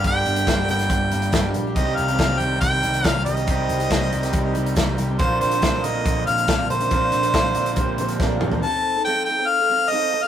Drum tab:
HH |x-xxx-xxx-xxx-x-|x-xxx-x-x-xxx-xx|x-xxx-xxx-xxx-x-|x-xxx-x-x-xxx-xx|
SD |----o--o----o---|----o-------o---|----o--o----o---|----o-------o---|
T2 |----------------|----------------|----------------|----------------|
FT |----------------|----------------|----------------|----------------|
BD |o---o---o---o---|o---o---o---o---|o---o---o---o---|o---o---o---o---|

HH |x-xxx-xxx-xx----|----------------|
SD |----o-------o---|----------------|
T2 |--------------o-|----------------|
FT |---------------o|----------------|
BD |o---o---o---o---|----------------|